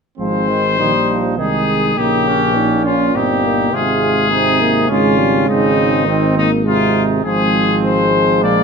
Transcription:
0.18 tuba G#1, trombone F3, french horn G#3, trumpet C4 C5
0.49 trombone D#3
0.79 tuba A#1, trombone D#3, french horn G3, trumpet D#4
1.10 trombone F3
1.38 tuba C2, trombone D#3, french horn G#3, trumpet D#4 G#4
1.97 tuba A#1, trombone C#3, french horn A#3, trumpet D#4 G4
2.28 trumpet C#4
2.55 trombone A#2, french horn D#4
2.85 french horn C#4, trumpet F4
3.14 tuba G1, french horn C4, trumpet D#4 G4
3.45 french horn A#3
3.73 tuba G#1, trombone C3, french horn G#3, trumpet F4 G#4
4.30 trombone C3, french horn C4, trumpet D#4
4.61 french horn A#3
4.88 tuba G#1, trombone C#3, french horn G#3, trumpet C#4 F4
5.18 french horn G3
5.48 tuba G#1, french horn G#3, trumpet C4 D#4
6.06 trombone D#3, french horn C4, trumpet C4
6.36 french horn A#3, trumpet D#4
6.65 trombone C3, french horn G#3, trumpet D#4 F4
7.24 tuba G#1, trombone F3, french horn G#3, trumpet C4 G#4
7.84 trumpet C5
8.42 tuba A#1, trumpet A#3 D5

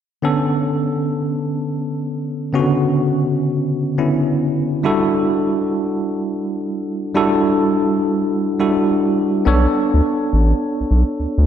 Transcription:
0.22 tine electric piano D3 B3 C#4 A4
2.53 tine electric piano C#3 B3 C#4 F#4
2.59 tine electric piano D3
3.98 tine electric piano D3 B3 C#4 E4
4.83 tine electric piano G3 D4 E4 F#4 A4
7.14 tine electric piano G3 D4 E4 F#4 A4
8.59 tine electric piano G3 D4 E4 F#4 A4
9.45 analog synth bass B1, tine electric piano B3 D4 A4 C#5
9.94 analog synth bass D2
10.33 analog synth bass A1
10.80 analog synth bass B1
10.91 analog synth bass B1
11.20 analog synth bass D2
11.38 analog synth bass D2

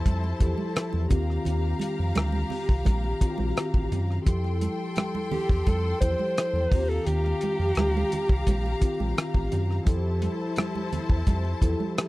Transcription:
Already playing: tine electric piano F3 E4 G4 A4, string section E4 C5 A5
0.06 analog synth bass F2, kick, closed hi-hat, high conga
0.24 muted conga
0.39 analog synth bass E2, tine electric piano F3 E4 G4 A4, kick, closed hi-hat
0.58 high conga
0.76 cross-stick, closed hi-hat
0.93 analog synth bass E2, muted conga
1.08 analog synth bass D#2, tine electric piano D#3 C4 F4 G4, string section G4 F5 A#5, kick, closed hi-hat, low conga
1.30 cross-stick
1.45 analog synth bass D#2, closed hi-hat, low conga
1.79 closed hi-hat, high conga
1.99 analog synth bass F2
2.15 analog synth bass D2, cross-stick, closed hi-hat, muted conga, high conga
2.32 muted conga, high conga
2.50 open hi-hat, low conga
2.69 analog synth bass C2, kick
2.85 analog synth bass A#1, kick, closed hi-hat, muted conga, high conga
3.04 muted conga
3.20 tine electric piano D#3 C4 F4 F#4, kick, closed hi-hat
3.29 tine electric piano G4
3.38 analog synth bass A#1, high conga
3.56 cross-stick, closed hi-hat, muted conga
3.74 analog synth bass A1, kick, muted conga
3.92 analog synth bass F#2, closed hi-hat, low conga
4.11 cross-stick
4.25 analog synth bass F2, tine electric piano F3 E4 G4 A4, string section A4 G5 C6, kick, closed hi-hat, low conga
4.44 cross-stick, muted conga
4.61 closed hi-hat, high conga
4.96 cross-stick, closed hi-hat, high conga
5.15 muted conga, high conga
5.32 analog synth bass E2, alto saxophone G4, open hi-hat, low conga
5.49 analog synth bass E2, kick
5.67 analog synth bass F2, alto saxophone A4, kick, closed hi-hat, muted conga, high conga
6.01 analog synth bass E2, tine electric piano F3 E4 G4 A4, alto saxophone C5, kick, closed hi-hat
6.19 high conga
6.38 cross-stick, closed hi-hat
6.53 analog synth bass E2, muted conga
6.71 analog synth bass D#2, tine electric piano D#3 C4 F4 G4, string section G4 F5 A#5, kick, open hi-hat, low conga
6.89 alto saxophone A4, cross-stick
7.06 analog synth bass D#2, alto saxophone G4, closed hi-hat, low conga
7.25 cross-stick, muted conga
7.41 closed hi-hat, high conga
7.59 analog synth bass F2
7.75 analog synth bass D2, cross-stick, closed hi-hat, muted conga, high conga
7.97 high conga
8.12 closed hi-hat, low conga
8.29 analog synth bass C2, kick
8.47 analog synth bass A#1, kick, closed hi-hat, high conga
8.66 muted conga
8.80 tine electric piano D#3 C4 F4 G4, kick, closed hi-hat
9.00 analog synth bass A#1, high conga
9.17 cross-stick, closed hi-hat, muted conga
9.34 analog synth bass A1, kick, muted conga
9.52 analog synth bass F#2, closed hi-hat, low conga
9.71 cross-stick
9.85 analog synth bass F2, tine electric piano F3 E4 G4 A4, string section E4 C5 A5, kick, closed hi-hat, low conga
10.22 closed hi-hat, high conga
10.56 cross-stick, closed hi-hat, muted conga, high conga
10.75 high conga
10.92 analog synth bass E2, closed hi-hat, low conga
11.10 analog synth bass E2, kick
11.27 analog synth bass F2, kick, closed hi-hat, muted conga, high conga
11.45 muted conga
11.61 analog synth bass E2, tine electric piano F3 E4 G4 A4, kick, closed hi-hat
11.80 high conga
11.98 cross-stick, closed hi-hat, muted conga

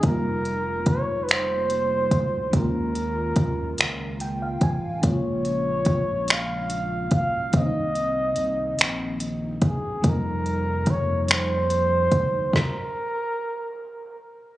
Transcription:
0.01 analog synth bass F1, fm electric piano G3 A#3 D#4, kick, closed hi-hat
0.06 fm electric piano C3 F4, flugelhorn A#4
0.45 closed hi-hat
0.86 flugelhorn C#5, kick, closed hi-hat
1.24 flugelhorn B4
1.29 flugelhorn C5, finger snap, closed hi-hat
1.70 closed hi-hat
2.11 analog synth bass D2, kick, closed hi-hat
2.51 analog synth bass D#2, fm electric piano D#3 G#3 A#3, kick, closed hi-hat
2.56 fm electric piano C#4 F4, flugelhorn A#4
2.95 closed hi-hat
3.36 analog synth bass D#2, kick, closed hi-hat
3.78 analog synth bass C#2, finger snap, closed hi-hat
4.20 fm electric piano G5, closed hi-hat
4.42 fm electric piano F5
4.61 analog synth bass A1, fm electric piano G#5, kick, closed hi-hat
5.01 analog synth bass A#1, fm electric piano C#3 G#3 A#3, kick, closed hi-hat
5.06 fm electric piano C#4 F4, flugelhorn C#5
5.45 closed hi-hat
5.85 kick, closed hi-hat
6.28 finger snap, closed hi-hat
6.33 flugelhorn F5
6.70 closed hi-hat
7.11 analog synth bass B1, kick, closed hi-hat
7.15 flugelhorn F5
7.52 analog synth bass C2, fm electric piano D#3 A#3, kick, closed hi-hat
7.57 fm electric piano C4 C#4, flugelhorn D#5
7.66 fm electric piano D#4
7.95 closed hi-hat
8.36 analog synth bass C2, closed hi-hat
8.79 analog synth bass A#1, finger snap, closed hi-hat
9.20 closed hi-hat
9.62 analog synth bass E1, kick, closed hi-hat
9.67 flugelhorn G#4
10.01 analog synth bass F2, fm electric piano F3 G3 A#3, kick, closed hi-hat
10.07 fm electric piano C3 D#4, flugelhorn A#4
10.46 closed hi-hat
10.86 kick, closed hi-hat
10.91 flugelhorn C#5
11.25 flugelhorn C#5, closed hi-hat
11.31 flugelhorn C5, finger snap
11.70 closed hi-hat
12.12 analog synth bass D2, kick, closed hi-hat
12.53 flugelhorn A#4, kick, snare

